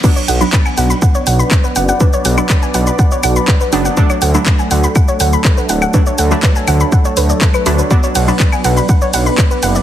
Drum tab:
CC |x---------------|----------------|----------------|----------------|
RD |----------------|----------------|----------------|----------------|
HH |--o---o---o---o-|--o---o---o---o-|--o---o---o---o-|--o---o---o---o-|
SH |xxxxxxxxxxxxxxxx|xxxxxxxxxxxxxxxx|xxxxxxxxxxxxxxxx|xxxxxxxxxxxxxxxx|
CL |-----x------x---|---x------x-----|-x------x------x|------x------x--|
CP |----x-------x---|----x-------x---|----x-------x---|----x-------x---|
BD |o---o---o---o---|o---o---o---o---|o---o---o---o---|o---o---o---o---|

CC |----------------|
RD |--x---x---x---x-|
HH |--o---o---o---o-|
SH |xxxxxxxxxxxxxxxx|
CL |-----x------x---|
CP |----x-------x---|
BD |o---o---o---o---|